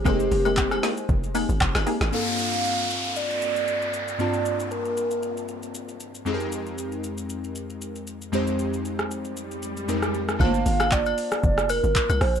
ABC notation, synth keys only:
X:1
M:4/4
L:1/8
Q:"Swing 16ths" 1/4=116
K:Gphr
V:1 name="Synth keys"
[A,CEGc]8 | [G,,B,CDF=A]8 | [G,,B,CDF=a]8 | [F,,A,CEGAB]8 |
[F,,A,CEGc]6 [F,,A,CEGB]2 | [=A,B,DFc=a]8 |]